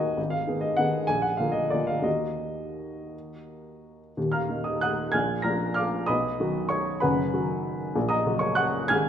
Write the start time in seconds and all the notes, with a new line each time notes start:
Already playing: D#2 D#3 A#3 F#4 D#5 F#5 G#5
0.17 G#1
0.30 F5
0.47 D#3 B3 G#4
0.61 D#5
0.77 D#3 B3 G#4 F#5
1.07 A#1 G#5
1.22 F#5
1.37 D3 A#3 F4 F5
1.52 D#5
1.70 D3 A#3 F4 D5
1.87 F5
2.01 D#2 D#3 A#3 F#4 D#5
4.17 D#1 D#2
4.32 F5 A#5 F6
4.49 D#3 A#3 D#4
4.64 D#5 D#6
4.81 F#5 D#6 F#6
5.12 A#1 A#2 G#5 F6 G#6
5.42 F3 A#3 D4 A#5 F6 A#6
5.74 F5 D6 F6
6.06 B1 B2 D#5 B5 D#6
6.40 D#3 F#3 F#4
6.69 C#5 C#6
7.00 F#1 F#2 B4 F#5 B5
7.33 D#3 F#3 F#4
7.95 A#1 A#2
8.09 D#5 A#5 D#6
8.26 C#3 F#3 F#4
8.39 C#5 C#6
8.55 F#5 C#6 F#6
8.88 G#1 G#2 G#5 F6 G#6